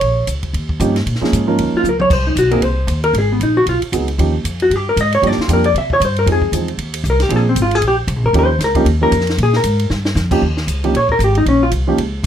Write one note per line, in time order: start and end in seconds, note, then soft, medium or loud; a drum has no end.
0.00 0.27 A#1 medium
0.00 0.27 C#5 medium
0.00 ride medium
0.27 0.53 C#2 medium
0.27 hi-hat pedal medium
0.27 ride medium
0.43 kick soft
0.43 ride soft
0.53 0.79 D#2 medium
0.53 ride medium
0.69 kick medium
0.80 1.05 G2 loud
0.80 0.94 F3 medium
0.80 0.94 A#3 medium
0.80 0.94 C#4 medium
0.80 0.94 D#4 medium
0.80 0.94 G4 medium
0.80 hi-hat pedal soft
0.80 ride medium
0.96 snare soft
0.96 ride soft
1.06 1.20 A#2 medium
1.06 ride medium
1.15 snare soft
1.21 1.46 F3 medium
1.21 1.46 G#3 medium
1.21 1.46 A#3 medium
1.21 1.46 C#4 medium
1.21 1.46 G#4 medium
1.21 muted upright bass stroke soft
1.21 snare soft
1.32 1.58 G#2 medium
1.32 hi-hat pedal medium
1.32 ride medium
1.47 1.82 F3 medium
1.47 1.82 A#3 medium
1.47 1.82 C#4 medium
1.47 1.82 D#4 medium
1.47 1.82 A#4 medium
1.58 1.72 D#2 medium
1.58 ride medium
1.73 1.86 F4 medium
1.73 muted upright bass stroke soft
1.83 2.09 C#2 medium
1.83 hi-hat pedal soft
1.83 mid tom soft
1.89 2.01 A#4 medium
2.00 2.11 C#5 loud
2.00 mid tom medium
2.10 2.35 C2 medium
2.10 2.26 C5 medium
2.10 kick medium
2.10 crash medium
2.27 2.37 D#4 soft
2.36 2.60 B1 medium
2.36 2.52 F#4 medium
2.36 hi-hat pedal medium
2.36 ride medium
2.51 2.61 F#3 medium
2.51 2.61 A#3 medium
2.51 2.61 C4 medium
2.51 2.62 D#4 medium
2.51 2.62 G#4 medium
2.51 2.64 A#4 medium
2.51 ride soft
2.61 2.87 C2 medium
2.61 3.03 C5 medium
2.61 ride medium
2.87 3.13 D#2 medium
2.87 hi-hat pedal soft
2.87 ride medium
3.04 3.14 A#4 medium
3.04 ride soft
3.13 3.39 G#1 medium
3.13 ride medium
3.19 3.31 G#4 medium
3.32 3.42 B3 soft
3.40 3.65 A#1 medium
3.40 3.56 D#4 medium
3.40 hi-hat pedal soft
3.40 ride medium
3.57 3.67 F#4 medium
3.66 3.80 B1 medium
3.66 3.77 F4 medium
3.66 ride medium
3.81 muted upright bass stroke soft
3.81 ride soft
3.92 4.18 C#2 loud
3.92 4.06 F#3 medium
3.92 4.06 G#3 soft
3.92 4.07 B3 medium
3.92 4.07 D#4 medium
3.92 4.07 G#4 medium
3.92 hi-hat pedal soft
3.92 ride medium
4.08 ride soft
4.18 4.44 D#2 medium
4.18 4.32 F3 medium
4.18 4.32 A#3 soft
4.18 4.32 C#4 soft
4.18 4.33 D#4 medium
4.18 4.33 G4 medium
4.18 ride medium
4.44 4.70 F2 medium
4.44 hi-hat pedal soft
4.44 ride medium
4.60 4.72 F#4 medium
4.60 ride soft
4.70 4.96 G2 medium
4.70 ride medium
4.76 4.88 G4 medium
4.89 4.98 A#4 medium
4.96 5.21 G#2 medium
4.96 hi-hat pedal soft
4.96 ride medium
5.01 5.13 D#5 medium
5.12 5.27 C#5 medium
5.12 ride soft
5.22 5.36 G2 medium
5.22 5.36 F3 medium
5.22 5.36 G3 medium
5.22 5.36 A#3 medium
5.22 5.36 D4 medium
5.22 5.37 G4 medium
5.22 ride medium
5.27 5.39 D5 medium
5.31 snare soft
5.38 5.50 F4 soft
5.38 muted upright bass stroke soft
5.38 snare soft
5.48 5.74 F2 medium
5.48 5.62 F3 medium
5.48 5.62 G3 medium
5.48 5.63 A#3 medium
5.48 5.63 D4 medium
5.48 5.63 G4 medium
5.48 hi-hat pedal soft
5.48 ride medium
5.53 5.66 A#4 medium
5.64 5.75 D5 medium
5.64 ride soft
5.74 5.99 C3 medium
5.74 ride medium
5.78 5.91 E5 medium
5.90 6.02 C#5 loud
5.90 kick medium
6.00 6.26 G2 loud
6.00 hi-hat pedal soft
6.00 ride medium
6.05 6.17 C5 medium
6.16 6.28 A#4 medium
6.16 ride soft
6.26 6.52 F2 medium
6.26 6.40 F3 medium
6.26 6.40 G#3 soft
6.26 6.40 C4 soft
6.26 6.40 D#4 medium
6.26 6.40 G#4 medium
6.26 ride medium
6.32 6.54 G#4 medium
6.42 kick soft
6.52 6.77 E2 medium
6.52 6.66 F3 medium
6.52 6.66 G#3 soft
6.52 6.67 C4 soft
6.52 6.67 D#4 medium
6.52 6.67 G#4 medium
6.52 hi-hat pedal soft
6.52 ride medium
6.68 ride soft
6.78 7.03 D#2 medium
6.78 ride medium
6.94 ride medium
7.04 7.28 C2 loud
7.04 hi-hat pedal medium
7.10 7.22 A#4 medium
7.20 7.31 G4 medium
7.20 snare soft
7.20 ride soft
7.29 7.55 A#1 medium
7.29 7.44 F3 medium
7.29 7.44 A#3 medium
7.29 7.44 C4 medium
7.29 7.44 D4 medium
7.29 7.44 G#4 medium
7.29 ride medium
7.36 7.48 G#4 loud
7.49 7.58 C4 medium
7.55 7.81 G#1 medium
7.55 hi-hat pedal soft
7.55 ride medium
7.62 7.75 F4 medium
7.71 7.84 G#4 medium
7.71 ride soft
7.81 8.07 A#1 medium
7.81 ride medium
7.88 7.95 G4 medium
8.07 8.16 C2 loud
8.07 hi-hat pedal soft
8.07 ride medium
8.16 8.24 A#1 medium
8.24 8.33 G#1 medium
8.24 8.35 A#4 medium
8.33 8.58 D#2 medium
8.33 8.48 F3 medium
8.33 8.48 A#3 medium
8.33 8.48 C#4 medium
8.33 8.48 D#4 medium
8.33 8.48 G4 medium
8.33 ride medium
8.39 8.62 C5 loud
8.59 8.84 C#2 medium
8.59 snare soft
8.59 hi-hat pedal soft
8.59 ride medium
8.64 8.87 A#4 medium
8.75 8.85 F3 medium
8.75 8.85 A#3 medium
8.75 8.85 C#4 medium
8.75 8.85 D#4 medium
8.75 8.86 G4 medium
8.75 kick medium
8.75 ride soft
8.85 9.11 D#2 medium
8.85 ride medium
9.01 9.11 F3 medium
9.01 9.11 A#3 medium
9.01 9.11 C#4 medium
9.01 9.11 D#4 medium
9.01 9.12 G4 medium
9.01 9.36 A#4 loud
9.11 9.37 F2 medium
9.11 hi-hat pedal soft
9.11 ride medium
9.20 snare soft
9.27 snare soft
9.27 ride soft
9.38 9.63 A#2 medium
9.38 ride medium
9.43 9.55 G#4 medium
9.53 9.89 A#4 medium
9.53 snare soft
9.64 9.89 G#2 medium
9.64 hi-hat pedal medium
9.64 ride medium
9.79 ride soft
9.90 10.15 G2 medium
9.90 snare medium
10.05 snare medium
10.15 10.41 F2 loud
10.15 snare medium
10.15 hi-hat pedal soft
10.31 10.41 F3 medium
10.31 10.41 A#3 medium
10.31 10.41 C#4 medium
10.31 10.41 D#4 medium
10.31 10.41 G4 medium
10.31 kick medium
10.31 crash medium
10.42 10.67 D#2 medium
10.57 snare soft
10.67 10.93 C#2 medium
10.67 hi-hat pedal soft
10.67 ride medium
10.84 10.93 F3 medium
10.84 10.93 A#3 medium
10.84 10.93 C#4 medium
10.84 10.94 D#4 medium
10.84 10.94 G4 medium
10.84 ride soft
10.94 11.18 A#1 medium
10.94 11.10 C#5 medium
10.94 ride medium
11.09 11.21 A#4 medium
11.09 kick soft
11.19 11.45 G#1 loud
11.19 hi-hat pedal medium
11.19 ride medium
11.24 11.37 G4 medium
11.35 11.47 D#4 medium
11.35 ride soft
11.46 11.71 A#1 medium
11.46 11.62 C#4 medium
11.46 ride medium
11.63 11.69 F4 medium
11.71 11.97 C2 medium
11.71 hi-hat pedal medium
11.71 ride medium
11.87 11.97 F3 medium
11.87 11.97 A#3 medium
11.87 11.97 C#4 medium
11.87 11.97 D#4 medium
11.87 11.97 G4 medium
11.98 12.23 C#2 medium
11.98 ride medium